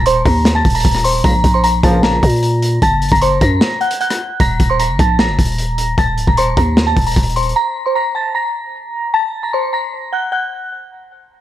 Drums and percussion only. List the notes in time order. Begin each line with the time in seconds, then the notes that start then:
0.06 closed hi-hat
0.26 kick, open hi-hat
0.45 snare, hi-hat pedal
0.65 kick, closed hi-hat
0.70 closed hi-hat
0.75 closed hi-hat
0.80 closed hi-hat
0.85 kick, closed hi-hat
0.91 cross-stick, closed hi-hat
0.98 closed hi-hat
1.04 closed hi-hat, open hi-hat
1.11 closed hi-hat
1.18 closed hi-hat
1.24 kick, closed hi-hat
1.44 kick, closed hi-hat
1.64 closed hi-hat
1.83 kick, closed hi-hat
2.03 snare
2.23 kick, closed hi-hat
2.30 closed hi-hat
2.36 closed hi-hat
2.43 closed hi-hat
2.62 closed hi-hat
2.82 kick, closed hi-hat
3.02 closed hi-hat
3.08 kick, closed hi-hat
3.15 closed hi-hat
3.22 closed hi-hat
3.41 kick, closed hi-hat
3.61 snare
3.81 closed hi-hat
3.91 closed hi-hat
4.01 closed hi-hat
4.10 cross-stick, closed hi-hat
4.40 kick, closed hi-hat
4.60 kick, closed hi-hat
4.79 closed hi-hat
4.99 kick, closed hi-hat
5.19 snare
5.39 kick, closed hi-hat
5.45 closed hi-hat
5.52 closed hi-hat
5.58 closed hi-hat
5.78 closed hi-hat
5.98 kick, closed hi-hat
6.18 closed hi-hat
6.27 kick
6.37 closed hi-hat
6.57 kick, closed hi-hat
6.77 snare
6.97 kick, closed hi-hat
7.02 closed hi-hat
7.06 closed hi-hat
7.11 closed hi-hat
7.16 kick, closed hi-hat
7.23 closed hi-hat
7.30 closed hi-hat
7.36 closed hi-hat
7.43 closed hi-hat
7.49 closed hi-hat